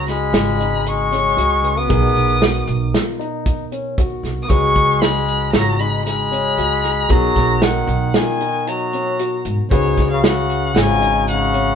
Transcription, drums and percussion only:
0.08 snare, closed hi-hat
0.34 snare, closed hi-hat, shaker
0.60 closed hi-hat
0.86 closed hi-hat
1.12 snare, closed hi-hat, shaker
1.38 closed hi-hat
1.64 closed hi-hat
1.90 kick, closed hi-hat, shaker
2.16 closed hi-hat, shaker
2.42 snare, closed hi-hat, shaker
2.68 closed hi-hat
2.94 snare, closed hi-hat, shaker
3.20 closed hi-hat, shaker
3.46 kick, closed hi-hat
3.72 closed hi-hat, shaker
3.98 kick, closed hi-hat
4.25 snare, closed hi-hat
4.50 kick, closed hi-hat, shaker
4.76 kick, closed hi-hat
5.02 snare, closed hi-hat
5.28 closed hi-hat
5.53 snare, closed hi-hat, shaker
5.80 closed hi-hat
6.07 snare, closed hi-hat
6.33 closed hi-hat, shaker
6.58 closed hi-hat
6.84 snare, closed hi-hat
7.09 kick, closed hi-hat, shaker
7.36 kick, snare, closed hi-hat
7.62 snare, closed hi-hat
7.89 closed hi-hat
8.14 snare, closed hi-hat, shaker
8.41 closed hi-hat
8.67 closed hi-hat
8.93 closed hi-hat, shaker
9.19 closed hi-hat
9.45 closed hi-hat
9.71 kick, closed hi-hat, shaker
9.97 kick, snare, closed hi-hat
10.24 snare, closed hi-hat
10.50 closed hi-hat
10.76 snare, closed hi-hat, shaker
11.02 closed hi-hat
11.28 closed hi-hat
11.54 closed hi-hat, shaker

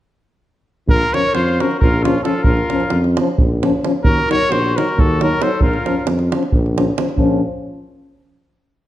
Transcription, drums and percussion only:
0.88 davul low
1.02 davul high
1.14 davul high
1.25 davul high
1.35 davul high
1.48 davul high
1.60 davul high
1.71 davul high
1.82 davul low
2.05 davul high
2.25 davul high
2.44 davul low
2.57 davul high
2.70 davul high
2.80 davul high
2.90 davul high
3.04 davul high
3.17 davul high
3.27 davul high
3.38 davul low
3.63 davul high
3.84 davul high
4.04 davul low
4.17 davul high
4.31 davul high
4.42 davul high
4.52 davul high
4.66 davul high
4.78 davul high
4.88 davul high
4.99 davul low
5.21 davul high
5.42 davul high
5.61 davul low
5.73 davul high
5.86 davul high
6.07 davul high
6.19 davul high
6.32 davul high
6.43 davul high
6.52 davul low
6.66 davul high
6.78 davul high
6.98 davul high
7.09 davul high
7.17 davul low

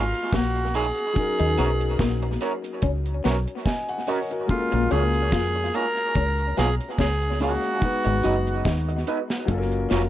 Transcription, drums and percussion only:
0.14 closed hi-hat
0.33 kick, snare, closed hi-hat
0.56 closed hi-hat
0.74 open hi-hat
0.98 closed hi-hat
1.16 kick, closed hi-hat
1.40 closed hi-hat
1.58 closed hi-hat
1.81 closed hi-hat
1.99 kick, snare, closed hi-hat
2.22 closed hi-hat
2.41 closed hi-hat
2.64 closed hi-hat
2.82 kick, closed hi-hat
3.06 closed hi-hat
3.25 snare, closed hi-hat
3.47 closed hi-hat
3.66 kick, snare, closed hi-hat
3.89 closed hi-hat
4.07 open hi-hat
4.31 closed hi-hat
4.49 kick, closed hi-hat
4.73 closed hi-hat
4.91 closed hi-hat
5.14 closed hi-hat
5.32 kick, snare, closed hi-hat
5.56 closed hi-hat
5.74 closed hi-hat
5.97 closed hi-hat
6.15 kick, closed hi-hat
6.38 closed hi-hat
6.58 snare, closed hi-hat
6.81 closed hi-hat
6.98 kick, snare, closed hi-hat
7.22 closed hi-hat
7.40 open hi-hat
7.64 closed hi-hat
7.82 kick, closed hi-hat
8.05 closed hi-hat
8.24 closed hi-hat
8.47 closed hi-hat
8.65 kick, snare, closed hi-hat
8.89 closed hi-hat
9.07 closed hi-hat
9.30 snare, closed hi-hat
9.48 kick, closed hi-hat
9.72 closed hi-hat
9.91 snare, closed hi-hat

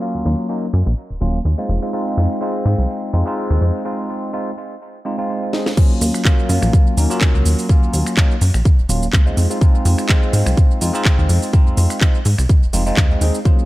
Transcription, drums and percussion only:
5.53 snare
5.66 snare
5.77 kick, crash, shaker
6.01 open hi-hat, shaker
6.14 finger snap, shaker
6.25 kick, clap, shaker
6.49 open hi-hat, shaker
6.62 finger snap, shaker
6.73 kick, shaker
6.97 open hi-hat, shaker
7.11 shaker
7.21 kick, clap, shaker
7.46 open hi-hat, shaker
7.59 open hi-hat, shaker
7.69 kick, shaker
7.93 open hi-hat, shaker
8.06 finger snap, shaker
8.17 kick, clap, shaker
8.41 open hi-hat, shaker
8.54 finger snap, shaker
8.65 kick, shaker
8.89 open hi-hat, shaker
9.03 shaker
9.13 kick, clap, shaker
9.37 open hi-hat, shaker
9.51 shaker
9.61 kick, shaker
9.85 open hi-hat, shaker
9.98 finger snap, shaker
10.09 kick, clap, shaker
10.33 open hi-hat, shaker
10.46 finger snap, shaker
10.57 kick, shaker
10.81 open hi-hat, shaker
10.95 shaker
11.05 kick, clap, shaker
11.29 open hi-hat, shaker
11.42 open hi-hat, shaker
11.53 kick, shaker
11.77 open hi-hat, shaker
11.90 finger snap, shaker
12.01 kick, clap, shaker
12.25 open hi-hat, shaker
12.38 finger snap, shaker
12.49 kick, shaker
12.73 open hi-hat, shaker
12.87 shaker
12.97 kick, clap, shaker
13.21 open hi-hat, shaker
13.34 shaker
13.45 kick, shaker

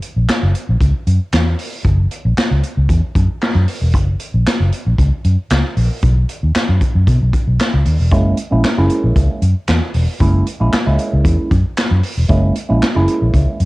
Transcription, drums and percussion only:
0.02 closed hi-hat
0.28 snare, clap, closed hi-hat
0.55 closed hi-hat
0.80 kick, closed hi-hat
1.07 closed hi-hat
1.32 snare, clap, closed hi-hat
1.59 open hi-hat
1.85 kick, closed hi-hat
2.11 closed hi-hat
2.37 snare, clap, closed hi-hat
2.63 closed hi-hat
2.89 kick, closed hi-hat
3.15 kick, closed hi-hat
3.41 snare, clap, closed hi-hat
3.68 open hi-hat
3.94 kick, closed hi-hat
4.20 closed hi-hat
4.46 snare, clap, closed hi-hat
4.72 closed hi-hat
4.98 kick, closed hi-hat
5.24 closed hi-hat
5.50 snare, clap, closed hi-hat
5.77 open hi-hat
6.02 kick, closed hi-hat
6.29 closed hi-hat
6.55 snare, clap, closed hi-hat
6.81 kick, closed hi-hat
7.07 kick, closed hi-hat
7.33 kick, closed hi-hat
7.59 snare, clap, closed hi-hat
7.85 open hi-hat
8.11 kick, closed hi-hat
8.37 closed hi-hat
8.64 snare, clap, closed hi-hat
8.90 closed hi-hat
9.16 kick, closed hi-hat
9.42 closed hi-hat
9.68 snare, clap, closed hi-hat
9.94 open hi-hat
10.20 kick, closed hi-hat
10.47 closed hi-hat
10.73 snare, clap, closed hi-hat
10.99 closed hi-hat
11.25 kick, closed hi-hat
11.51 kick, closed hi-hat
11.77 snare, clap, closed hi-hat
12.03 open hi-hat
12.29 kick
12.55 closed hi-hat
12.82 snare, clap, closed hi-hat
13.08 closed hi-hat
13.34 kick, closed hi-hat
13.60 closed hi-hat

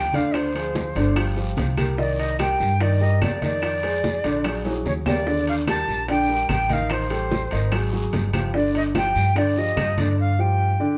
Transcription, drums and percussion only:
0.13 high conga, high timbale, short guiro
0.34 high bongo, high conga, high timbale, long guiro, claves
0.55 high bongo, high conga, high timbale
0.75 high bongo, high conga, short guiro
0.96 high bongo, high conga, high timbale, short guiro
1.16 high bongo, high conga, high timbale, long guiro, claves
1.37 high bongo, high conga
1.57 high bongo, low bongo, high conga, high timbale, short guiro
1.77 high conga, high timbale, short guiro, claves
1.98 high bongo, high conga, long guiro
2.19 high bongo, high conga, high timbale
2.39 high bongo, high conga, high timbale, short guiro, claves
2.60 high bongo, high conga, short guiro
2.80 high bongo, high conga, high timbale, long guiro
3.01 high bongo, high conga
3.22 high bongo, low bongo, high conga, high timbale, low timbale, short guiro, claves
3.42 high conga, high timbale, short guiro
3.62 high bongo, high conga, high timbale, long guiro, claves
3.83 high bongo, high conga, high timbale
4.04 high bongo, high conga, short guiro
4.24 high bongo, high conga, high timbale, short guiro
4.44 high bongo, high conga, high timbale, long guiro, claves
4.65 high bongo, high conga, high timbale
4.86 high bongo, low bongo, high conga, short guiro
5.06 high conga, low timbale, short guiro, claves
5.27 high bongo, long guiro
5.47 high bongo, high conga, high timbale
5.67 high bongo, high conga, high timbale, short guiro, claves
5.88 high bongo, high conga, short guiro
6.08 high bongo, high conga, high timbale, long guiro
6.29 high bongo, high conga
6.49 high bongo, low bongo, high conga, high timbale, short guiro, claves
6.70 high conga, high timbale, short guiro
6.90 high bongo, high conga, high timbale, long guiro, claves
7.10 high bongo, high conga, high timbale
7.31 high bongo, high conga, short guiro
7.51 high bongo, high conga, high timbale, short guiro
7.72 high bongo, high conga, high timbale, long guiro, claves
7.93 high bongo, high conga
8.13 high bongo, low bongo, high conga, high timbale, short guiro
8.33 high conga, high timbale, short guiro, claves
8.54 high bongo, high conga, long guiro
8.74 high bongo, high conga, high timbale
8.95 high bongo, high conga, high timbale, short guiro, claves
9.15 high bongo, high conga, short guiro
9.36 high bongo, high conga, high timbale, long guiro
9.57 high bongo, high conga
9.77 high bongo, low bongo, high conga, high timbale, short guiro, claves
9.98 high conga, high timbale, short guiro

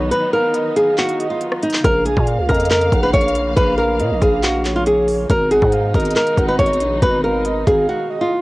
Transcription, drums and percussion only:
0.12 closed hi-hat
0.54 closed hi-hat
0.76 closed hi-hat
0.98 clap, closed hi-hat
1.09 closed hi-hat
1.20 closed hi-hat
1.41 closed hi-hat
1.52 cross-stick
1.63 closed hi-hat, open hi-hat
1.70 clap, closed hi-hat
1.77 closed hi-hat
1.84 kick, closed hi-hat
2.06 closed hi-hat
2.17 kick
2.27 closed hi-hat
2.49 kick, closed hi-hat
2.54 closed hi-hat
2.60 closed hi-hat
2.65 closed hi-hat
2.71 clap, closed hi-hat
2.81 closed hi-hat
2.92 kick, closed hi-hat
3.14 kick, closed hi-hat
3.21 closed hi-hat
3.28 closed hi-hat
3.35 closed hi-hat
3.57 kick, closed hi-hat
4.00 closed hi-hat
4.22 kick, closed hi-hat
4.43 clap, closed hi-hat
4.65 clap, closed hi-hat
4.86 closed hi-hat
5.08 open hi-hat
5.30 kick, closed hi-hat
5.51 closed hi-hat
5.62 kick
5.72 closed hi-hat
5.94 kick, closed hi-hat
6.00 closed hi-hat
6.05 closed hi-hat
6.11 closed hi-hat
6.16 clap, closed hi-hat
6.27 closed hi-hat
6.38 kick, closed hi-hat
6.59 kick, closed hi-hat
6.66 closed hi-hat
6.73 closed hi-hat
6.81 closed hi-hat
7.02 kick, closed hi-hat
7.45 closed hi-hat
7.67 kick, closed hi-hat

